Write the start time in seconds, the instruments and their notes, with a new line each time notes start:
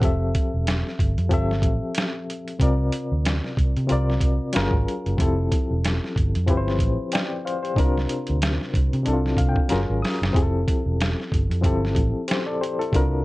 0.01 fingered electric bass F1, reed electric piano F3 C4 G4 A4, kick, closed hi-hat
0.05 reed electric piano E5
0.35 kick, closed hi-hat
0.54 fingered electric bass E1
0.67 snare, closed hi-hat
0.87 snare
0.99 fingered electric bass G1, kick, closed hi-hat
1.18 fingered electric bass F2, closed hi-hat
1.29 fingered electric bass G1, reed electric piano F3 C4 G4 A4, kick, closed hi-hat
1.34 reed electric piano E5
1.51 snare
1.62 fingered electric bass A1, kick, closed hi-hat
1.95 snare, closed hi-hat
2.30 closed hi-hat
2.48 closed hi-hat
2.59 fingered electric bass C2, reed electric piano C3 C4 F4 A#4 D5, kick, closed hi-hat
2.92 closed hi-hat
3.12 fingered electric bass D2
3.26 snare, closed hi-hat
3.45 snare
3.57 fingered electric bass C2, kick, closed hi-hat
3.77 fingered electric bass C3, closed hi-hat
3.87 fingered electric bass C2, reed electric piano C3 C4 F4 A#4, closed hi-hat
3.92 reed electric piano D5
4.10 snare
4.20 fingered electric bass C2, kick, closed hi-hat
4.53 fingered electric bass F#1, reed electric piano F#3 C#4 F4 G#4, snare, closed hi-hat
4.57 reed electric piano A#4
4.71 fingered electric bass G#1, kick
4.89 closed hi-hat
5.06 fingered electric bass F#1, closed hi-hat
5.17 fingered electric bass F1, reed electric piano F3 C4 E4 G4, kick, closed hi-hat
5.22 reed electric piano A4
5.52 kick, closed hi-hat
5.71 fingered electric bass E1
5.84 snare, closed hi-hat
6.04 snare
6.16 fingered electric bass G1, kick, closed hi-hat
6.35 fingered electric bass F2, closed hi-hat
6.46 fingered electric bass G1, reed electric piano F3 C4 E4 G4, kick, closed hi-hat
6.51 reed electric piano B4
6.57 reed electric piano C5
6.68 snare
6.79 fingered electric bass A1, kick, closed hi-hat
7.12 reed electric piano D5 G5, snare, closed hi-hat
7.45 reed electric piano C5 F5, closed hi-hat
7.63 reed electric piano G4 C5, closed hi-hat
7.75 fingered electric bass C2, reed electric piano C3 C4 D4 E4, kick, closed hi-hat
7.79 reed electric piano A#4
7.85 reed electric piano F4
7.98 snare
8.09 closed hi-hat
8.27 fingered electric bass D2, closed hi-hat
8.42 snare, closed hi-hat
8.61 snare
8.74 fingered electric bass C2, kick, closed hi-hat
8.93 fingered electric bass C3, closed hi-hat
9.03 reed electric piano C3 C4 D4 E4, closed hi-hat
9.07 fingered electric bass C2, reed electric piano A4
9.13 reed electric piano F4
9.26 snare
9.37 fingered electric bass C2, reed electric piano F5, kick, closed hi-hat
9.49 reed electric piano G5
9.56 kick
9.68 fingered electric bass F#1, reed electric piano F#3 C#4 F4 G#4 A#5, closed hi-hat
9.72 reed electric piano A#4, snare
9.90 fingered electric bass G#1
10.02 reed electric piano D#6, snare, open hi-hat
10.22 fingered electric bass F#1, snare
10.32 fingered electric bass F1, reed electric piano F3 C4 E4 G4, kick
10.36 reed electric piano G#4, closed hi-hat
10.43 reed electric piano A4
10.68 kick, closed hi-hat
10.86 fingered electric bass E1
11.01 snare, closed hi-hat
11.20 snare
11.32 fingered electric bass G1, kick, closed hi-hat
11.50 fingered electric bass F2, closed hi-hat
11.61 fingered electric bass G1, reed electric piano F3 C4 E4 G4, kick, closed hi-hat
11.66 reed electric piano A4
11.85 snare
11.95 fingered electric bass A1, kick, closed hi-hat
12.28 reed electric piano G4 C5, snare, closed hi-hat
12.46 reed electric piano A4 D5
12.61 reed electric piano G4 C5, closed hi-hat
12.79 reed electric piano E4 A4, closed hi-hat
12.91 fingered electric bass C2, reed electric piano C3 C4 D4 F4, kick, closed hi-hat
12.96 reed electric piano A#4